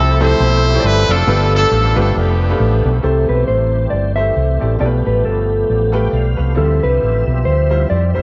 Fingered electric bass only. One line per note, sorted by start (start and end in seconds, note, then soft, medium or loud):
0.00 0.33 C2 medium
0.40 0.77 B1 loud
0.84 1.05 G1 loud
1.09 1.24 F1 loud
1.27 1.64 G1 loud
1.71 1.93 A1 medium
1.97 2.12 G1 loud
2.16 2.53 F1 medium
2.60 2.81 A1 medium
2.85 3.01 B1 loud
3.04 3.25 C2 medium
3.29 3.45 B1 medium
3.48 3.85 A1 medium
3.92 4.29 G1 medium
4.36 4.58 C2 medium
4.62 4.78 A1 medium
4.81 5.02 B1 medium
5.07 5.22 A1 medium
5.25 5.62 G1 medium
5.70 6.07 A1 medium
6.13 6.35 B1 medium
6.39 6.55 C2 medium
6.58 6.79 D2 loud
6.84 6.99 C2 medium
7.03 7.24 A1 medium
7.28 7.43 B1 medium
7.46 7.84 D2 medium
7.91 8.12 F2 medium
8.16 8.22 F1 medium